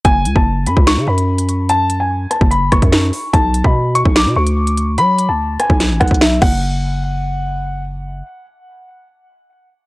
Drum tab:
CC |------------------------------------------------|------------------------------------------------|------------------------------------------------|------------------------------------------x-----|
HH |x-----x-----------x-----x--------x-----x--x-----|x-----x-----------x-----x-----x--x--------o-----|x-----x-----------x-----x--------x-----x--x-----|x-----x-----------x-----x-----x-x-x-------------|
SD |------------------------o-----------------------|------------------r-----------r-----o-----------|------------------------o-----------------------|------------------r-----o-----r-----o-----------|
BD |o--------o-----------o--------------------------|---------------------o--------o--o--------------|o--------o-----------o--------------------------|---------------------o--------o--o--------o-----|

CC |------------------------------------------------|------------------------------------------------|
HH |------------------------------------------------|------------------------------------------------|
SD |------------------------------------------------|------------------------------------------------|
BD |------------------------------------------------|------------------------------------------------|